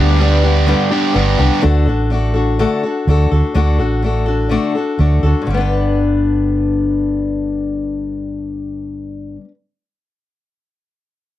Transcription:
Already playing: D2 G2 D3 G3 B3 D4 G4
0.18 G3 B3 D4 G4
0.43 G3 B3 D4 G4
0.67 G2 D3 G3 B3 D4 G4
0.90 G3 B3 D4 G4
1.14 G1 G2 D3 G3 B3 D4 G4
1.38 C2 G3 B3 D4 G4
1.61 D2 D3 A3 D4 F#4 A4
1.86 A1 D4 F#4 A4
2.10 A3 D4 F#4 A4
2.34 D4 F#4 A4
2.59 D3 A3 D4 F#4 A4
2.83 D4 F#4 A4
3.07 D2 A3 D4 F#4 A4
3.31 D2 D4 F#4 A4
3.54 D2 D3 A3 D4 F#4 A4
3.78 A1 D4 F#4 A4
4.02 A3 D4 F#4 A4
4.26 D4 F#4 A4
4.49 D3 A3 D4 F#4 A4
4.75 D4 F#4 A4
4.99 D2 A3 D4 F#4 A4
5.23 D2 D4 F#4 A4
5.42 G2
5.47 G1 D3 G3
5.54 B3 D4
5.60 B4

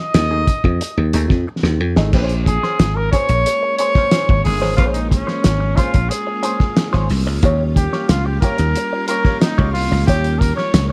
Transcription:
Already playing: D#5
0.14 D#2, muted hollow-body jazz guitar stroke, snare, closed hi-hat
0.31 A3 D#4 G#4
0.47 muted hollow-body jazz guitar stroke, kick, closed hi-hat
0.64 F2, muted hollow-body jazz guitar stroke, kick
0.81 muted hollow-body jazz guitar stroke, closed hi-hat
0.97 D#2
1.13 D#2 A3 D#4 G#4, closed hi-hat
1.30 F2, muted hollow-body jazz guitar stroke, kick, snare
1.47 muted hollow-body jazz guitar stroke
1.63 D#2, muted hollow-body jazz guitar stroke, snare
1.80 F2
1.96 G#1 A3 D#4 G#4, snare
2.13 A#1 G#3 A#3 C#4 F4 G#4 C5, kick, crash
2.29 closed hi-hat
2.46 G#4, muted hollow-body jazz guitar stroke, kick, closed hi-hat
2.63 C#4 G#4 C5, snare
2.79 G#1, muted hollow-body jazz guitar stroke, snare, closed hi-hat
2.96 A#4, muted hollow-body jazz guitar stroke
3.12 C#4 G#4 C5 C#5, kick, closed hi-hat
3.29 A#1, muted hollow-body jazz guitar stroke, closed hi-hat
3.46 muted hollow-body jazz guitar stroke, closed hi-hat
3.63 muted hollow-body jazz guitar stroke
3.77 C#4 G#4 C#5, closed hi-hat
3.81 C5
3.95 C#4 G#4 C5, kick, snare
4.11 C#4 G#4 C5, snare, closed hi-hat
4.29 G#1, kick
4.44 G1 G#4, muted hollow-body jazz guitar stroke, open hi-hat
4.62 G#1 C#4 G#4 C5, snare
4.77 A#1 C#4 F4 G#4 C5, kick, closed hi-hat
4.93 D#4, closed hi-hat
5.10 C#4, muted hollow-body jazz guitar stroke, kick, closed hi-hat
5.27 C#4 G#4 C5, snare
5.44 G#1, snare, closed hi-hat
5.60 muted hollow-body jazz guitar stroke
5.76 C#4 F4 G#4 C5, kick, closed hi-hat
5.94 A#1, muted hollow-body jazz guitar stroke, kick, closed hi-hat
6.10 G#4, muted hollow-body jazz guitar stroke, closed hi-hat
6.27 muted hollow-body jazz guitar stroke
6.43 C#4 G#4 C5, closed hi-hat
6.60 muted hollow-body jazz guitar stroke, kick, snare
6.77 muted hollow-body jazz guitar stroke, snare, closed hi-hat
6.93 G#1 C#4 G#4 C5, snare
7.10 C2, muted hollow-body jazz guitar stroke, open hi-hat
7.27 C#2, muted hollow-body jazz guitar stroke
7.43 D#2 G3 A#3 F4 G4 C#5, kick, closed hi-hat
7.76 G4, muted hollow-body jazz guitar stroke, kick, closed hi-hat
7.93 F4 G4 C#5, snare
8.09 C#2 F4, muted hollow-body jazz guitar stroke, snare, closed hi-hat
8.25 G4, muted hollow-body jazz guitar stroke
8.41 F4 G4 A#4 C#5, kick, closed hi-hat
8.58 D#2, closed hi-hat
8.76 muted hollow-body jazz guitar stroke, closed hi-hat
8.93 muted hollow-body jazz guitar stroke
9.08 F4 G4 A#4 C#5, closed hi-hat
9.25 F4 G4 C#5, kick, snare
9.41 D#4, muted hollow-body jazz guitar stroke, snare, closed hi-hat
9.58 C#2 F4 G4 C#5, kick
9.72 C2 F4, muted hollow-body jazz guitar stroke, open hi-hat
9.92 C#2, muted hollow-body jazz guitar stroke, snare
10.06 D#2 F4 G4 C#5, kick, closed hi-hat
10.24 closed hi-hat
10.39 A#4, muted hollow-body jazz guitar stroke, kick, closed hi-hat
10.55 F4 G4 C#5, snare
10.74 C#2, muted hollow-body jazz guitar stroke, snare, closed hi-hat
10.89 C#5

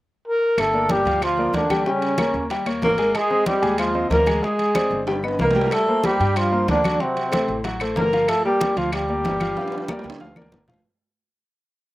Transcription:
0.28 A#4
0.57 G1 A3 A4, high bongo, high conga, high timbale, claves
0.73 A#3 A#4 D5, high conga
0.89 G3 G4, high bongo, high conga, high timbale, low timbale
1.05 D2 F3 F4 F5, high conga, high timbale
1.22 F3 F4, high bongo, high conga, high timbale, claves
1.37 A#3 A#4 D5, high conga
1.53 D#2 D3 D4, high bongo, low bongo, high conga, high timbale, low timbale
1.70 G3 G4 G5, high conga, high timbale, claves
1.86 C#3 G3 C#4 G4 G5, high bongo, high conga
2.02 high bongo, high conga, high timbale
2.18 A#3 A#4 C#5, high bongo, high conga, high timbale, low timbale, claves
2.34 D#2, high bongo, high conga
2.50 G3 G4 G5, high bongo, high conga, high timbale
2.66 A#3 A#4 C#5, high conga, high timbale, claves
2.82 G#1 A#3 A#4, high bongo, low bongo, high conga, low timbale
2.98 G#3 G#4 G#5, high bongo, high conga, high timbale
3.15 G#3 G#4, high bongo, high conga, high timbale, claves
3.31 C4 C5 D#5, high conga
3.46 G3 G4, high bongo, high conga, high timbale, low timbale
3.62 D#2 G#3 G#4 G#5, high conga, high timbale
3.78 F3 F4, high bongo, high conga, high timbale, claves
3.94 C4 C5 D#5, high conga
4.10 D2 A#3 A#4, high bongo, low bongo, high conga, high timbale, low timbale
4.26 G#3 G#4 G#5, high conga, high timbale, claves
4.42 G#3 G#4 G#5, high bongo, high conga
4.59 high bongo, high conga, high timbale
4.75 C4 C5 D5, high bongo, high conga, high timbale, low timbale, claves
4.90 G1, high bongo, high conga
5.07 G3 G4 G5, high bongo, high conga, high timbale
5.23 B3 B4 D#5, high conga, claves
5.28 high timbale
5.39 C2 A#3 A#4, high bongo, low bongo, high conga
5.51 low timbale
5.56 G3 G4 G5, high bongo, high conga
5.61 low timbale
5.71 A3 A4, high bongo, high conga, high timbale, claves
5.87 A#3 A#4 C5, high conga
6.04 G3 G4, high bongo, high conga, high timbale, low timbale
6.20 G2 G3 G4 G5, high conga, high timbale
6.36 F3 F4, high bongo, high conga, high timbale, claves
6.52 A#3 A#4 C5, high conga
6.68 D2 D3 D4, high bongo, low bongo, high conga, high timbale, low timbale
6.84 F#3 F#4 F#5, high conga, high timbale, claves
7.00 C3 F#3 C4 F#4 F#5, high bongo, high conga
7.16 high bongo, high conga, high timbale
7.32 A3 A4 C5, high bongo, high conga, high timbale, low timbale, claves
7.48 A1, high bongo, high conga
7.64 F#3 F#4 F#5, high bongo, high conga, high timbale
7.80 A3 A4 C5, high conga, high timbale, claves
7.96 G1 A#3 A#4, high bongo, low bongo, high conga, low timbale
8.13 F3 F4 F5, high bongo, high conga, high timbale
8.28 A3 A4, high bongo, high conga, high timbale, claves
8.45 G3 A#3 G4 A#4 D5, high conga
8.61 high bongo, high conga, high timbale, low timbale
8.77 D2 F3 F4 F5, high conga, high timbale
8.92 G3 G4, high bongo, high conga, high timbale, claves
9.09 A#3 A#4 D5, high conga
9.24 G1, high bongo, low bongo, high conga, high timbale, low timbale
9.40 F3 F4 F5, high conga, high timbale, claves
9.57 F3 F4 F5, high bongo, high conga, high timbale
9.68 high timbale
9.72 high bongo, high conga
9.78 high timbale
9.88 A#3 A#4 D5, high bongo, high conga, claves
9.99 low timbale
10.04 D2, high conga
10.10 high timbale
10.20 F3 F4 F5, low bongo, high conga, low timbale
10.36 A#3 A#4 D5, low bongo, high conga, claves
10.42 low timbale
10.52 G1, low bongo, high conga, low timbale
10.68 F3 F4 F5, low bongo, low conga
10.74 low timbale

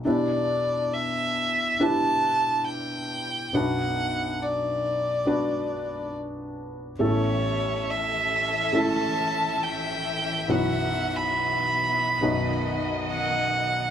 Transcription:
0.05 E2 B2 D4 E4 G4 B4 D5
0.93 E5
1.79 D4 E4 G4 B4 A5
2.67 G5
3.53 B1 F#2 B3 D4 F#4 B4 F#5
4.42 D5
5.26 B3 D4 F#4 B4
6.99 A1 E2 E3 A3 C#4 E4 A4 C#5 E5
7.90 E5
8.73 A3 C#4 E4 A4
8.77 A5
9.63 G5
10.48 B1 F#2 B3 E4 F#4 B4 F#5
11.16 B5
12.21 B1 F#2 D#3 B3 D#4 F#4 B4 D#5
13.11 F#5

